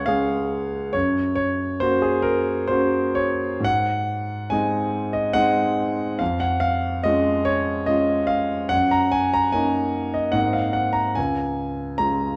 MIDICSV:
0, 0, Header, 1, 2, 480
1, 0, Start_track
1, 0, Key_signature, -5, "major"
1, 0, Tempo, 869565
1, 519, Time_signature, 3, 2, 24, 8
1, 1475, Tempo, 960000
1, 1955, Tempo, 875912
1, 2435, Tempo, 841515
1, 4835, Tempo, 820793
1, 6968, End_track
2, 0, Start_track
2, 0, Title_t, "Grand piano"
2, 0, Program_c, 0, 0
2, 0, Control_c, 0, 64, 127
2, 0, Note_on_c, 0, 37, 65
2, 0, Note_on_c, 0, 56, 53
2, 0, Note_on_c, 0, 61, 52
2, 0, Note_on_c, 0, 68, 53
2, 0, Note_on_c, 0, 73, 86
2, 0, Note_on_c, 0, 77, 95
2, 0, Note_on_c, 0, 78, 94
2, 32, Note_off_c, 0, 77, 0
2, 32, Note_on_c, 0, 77, 96
2, 40, Note_off_c, 0, 61, 0
2, 40, Note_on_c, 0, 61, 50
2, 41, Note_off_c, 0, 56, 0
2, 41, Note_on_c, 0, 56, 50
2, 46, Note_off_c, 0, 68, 0
2, 46, Note_on_c, 0, 68, 57
2, 500, Note_off_c, 0, 56, 0
2, 500, Note_off_c, 0, 61, 0
2, 503, Note_off_c, 0, 68, 0
2, 512, Note_off_c, 0, 73, 0
2, 512, Note_on_c, 0, 73, 96
2, 518, Note_off_c, 0, 77, 0
2, 519, Note_on_c, 0, 42, 60
2, 527, Control_c, 0, 64, 0
2, 532, Note_off_c, 0, 37, 0
2, 533, Note_off_c, 0, 78, 0
2, 635, Control_c, 0, 64, 127
2, 740, Note_off_c, 0, 73, 0
2, 748, Note_on_c, 0, 73, 92
2, 979, Note_off_c, 0, 42, 0
2, 988, Note_off_c, 0, 73, 0
2, 995, Note_on_c, 0, 72, 97
2, 1002, Note_on_c, 0, 61, 53
2, 1004, Note_on_c, 0, 58, 51
2, 1007, Note_on_c, 0, 66, 54
2, 1112, Note_off_c, 0, 72, 0
2, 1115, Note_on_c, 0, 68, 77
2, 1228, Note_on_c, 0, 70, 98
2, 1232, Note_off_c, 0, 68, 0
2, 1459, Note_off_c, 0, 61, 0
2, 1460, Note_off_c, 0, 58, 0
2, 1461, Note_off_c, 0, 66, 0
2, 1475, Note_off_c, 0, 70, 0
2, 1477, Note_on_c, 0, 72, 91
2, 1489, Note_on_c, 0, 58, 52
2, 1489, Note_on_c, 0, 61, 53
2, 1493, Note_on_c, 0, 66, 52
2, 1714, Note_on_c, 0, 73, 94
2, 1715, Note_off_c, 0, 72, 0
2, 1940, Note_on_c, 0, 44, 64
2, 1942, Note_off_c, 0, 58, 0
2, 1942, Note_off_c, 0, 61, 0
2, 1944, Note_off_c, 0, 66, 0
2, 1956, Note_off_c, 0, 73, 0
2, 1962, Note_on_c, 0, 78, 105
2, 1968, Control_c, 0, 64, 0
2, 2063, Control_c, 0, 64, 127
2, 2413, Note_off_c, 0, 44, 0
2, 2430, Note_on_c, 0, 80, 93
2, 2439, Note_off_c, 0, 78, 0
2, 2440, Note_on_c, 0, 56, 51
2, 2443, Note_on_c, 0, 60, 51
2, 2446, Note_on_c, 0, 63, 53
2, 2790, Note_on_c, 0, 75, 83
2, 2791, Note_off_c, 0, 80, 0
2, 2892, Note_off_c, 0, 56, 0
2, 2894, Note_off_c, 0, 60, 0
2, 2895, Note_off_c, 0, 63, 0
2, 2906, Note_on_c, 0, 78, 112
2, 2912, Note_off_c, 0, 75, 0
2, 2914, Note_on_c, 0, 56, 55
2, 2919, Note_on_c, 0, 60, 56
2, 2919, Note_on_c, 0, 63, 59
2, 3378, Note_off_c, 0, 56, 0
2, 3381, Note_off_c, 0, 60, 0
2, 3381, Note_off_c, 0, 63, 0
2, 3393, Note_on_c, 0, 77, 88
2, 3397, Note_off_c, 0, 78, 0
2, 3404, Note_on_c, 0, 41, 68
2, 3412, Control_c, 0, 64, 0
2, 3491, Control_c, 0, 64, 127
2, 3514, Note_on_c, 0, 78, 90
2, 3520, Note_off_c, 0, 77, 0
2, 3629, Note_on_c, 0, 77, 98
2, 3642, Note_off_c, 0, 78, 0
2, 3874, Note_off_c, 0, 41, 0
2, 3876, Note_on_c, 0, 75, 97
2, 3878, Note_off_c, 0, 77, 0
2, 3887, Note_on_c, 0, 56, 54
2, 3889, Note_on_c, 0, 65, 55
2, 3891, Note_on_c, 0, 61, 54
2, 4113, Note_on_c, 0, 73, 99
2, 4116, Note_off_c, 0, 75, 0
2, 4334, Note_off_c, 0, 56, 0
2, 4335, Note_off_c, 0, 65, 0
2, 4336, Note_off_c, 0, 61, 0
2, 4349, Note_on_c, 0, 75, 93
2, 4353, Note_off_c, 0, 73, 0
2, 4357, Note_on_c, 0, 56, 51
2, 4358, Note_on_c, 0, 61, 51
2, 4362, Note_on_c, 0, 65, 55
2, 4580, Note_on_c, 0, 77, 99
2, 4593, Note_off_c, 0, 75, 0
2, 4814, Note_off_c, 0, 56, 0
2, 4815, Note_off_c, 0, 61, 0
2, 4817, Note_off_c, 0, 65, 0
2, 4820, Note_on_c, 0, 78, 110
2, 4828, Note_off_c, 0, 77, 0
2, 4832, Note_on_c, 0, 42, 61
2, 4848, Control_c, 0, 64, 0
2, 4937, Control_c, 0, 64, 127
2, 4950, Note_off_c, 0, 78, 0
2, 4950, Note_on_c, 0, 82, 94
2, 5069, Note_on_c, 0, 80, 100
2, 5074, Note_off_c, 0, 82, 0
2, 5192, Note_off_c, 0, 80, 0
2, 5198, Note_on_c, 0, 82, 93
2, 5298, Note_off_c, 0, 42, 0
2, 5308, Note_on_c, 0, 80, 99
2, 5314, Note_on_c, 0, 61, 51
2, 5315, Note_off_c, 0, 82, 0
2, 5316, Note_on_c, 0, 58, 46
2, 5324, Note_on_c, 0, 63, 50
2, 5667, Note_off_c, 0, 80, 0
2, 5667, Note_on_c, 0, 75, 81
2, 5768, Note_off_c, 0, 61, 0
2, 5769, Note_off_c, 0, 58, 0
2, 5771, Note_on_c, 0, 78, 94
2, 5773, Note_off_c, 0, 63, 0
2, 5778, Note_on_c, 0, 44, 59
2, 5778, Note_on_c, 0, 58, 46
2, 5786, Note_on_c, 0, 60, 45
2, 5788, Note_on_c, 0, 63, 48
2, 5789, Note_off_c, 0, 75, 0
2, 5802, Control_c, 0, 64, 0
2, 5897, Note_on_c, 0, 77, 79
2, 5902, Control_c, 0, 64, 127
2, 5903, Note_off_c, 0, 78, 0
2, 6014, Note_on_c, 0, 78, 86
2, 6025, Note_off_c, 0, 77, 0
2, 6128, Note_on_c, 0, 82, 86
2, 6143, Note_off_c, 0, 78, 0
2, 6242, Note_off_c, 0, 58, 0
2, 6246, Note_off_c, 0, 60, 0
2, 6247, Note_off_c, 0, 63, 0
2, 6251, Note_off_c, 0, 44, 0
2, 6260, Note_off_c, 0, 82, 0
2, 6260, Note_on_c, 0, 80, 92
2, 6271, Note_on_c, 0, 37, 56
2, 6281, Control_c, 0, 64, 0
2, 6362, Control_c, 0, 64, 127
2, 6738, Note_off_c, 0, 37, 0
2, 6744, Note_on_c, 0, 82, 91
2, 6747, Note_off_c, 0, 80, 0
2, 6750, Note_on_c, 0, 56, 44
2, 6756, Note_on_c, 0, 61, 42
2, 6756, Note_on_c, 0, 65, 44
2, 6968, Note_off_c, 0, 56, 0
2, 6968, Note_off_c, 0, 61, 0
2, 6968, Note_off_c, 0, 65, 0
2, 6968, Note_off_c, 0, 82, 0
2, 6968, End_track
0, 0, End_of_file